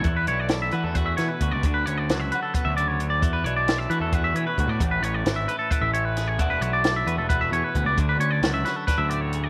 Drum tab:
HH |xxxxxxx|xxxxxxx|xxxxxxx|xxxxxxx|
SD |--o--o-|--o----|--o----|--o---o|
BD |o---o-o|o---o--|o---o-o|o---o--|

HH |xxxxxxx|xxxxxxx|
SD |--o----|--ooo--|
BD |o---o-o|o---o--|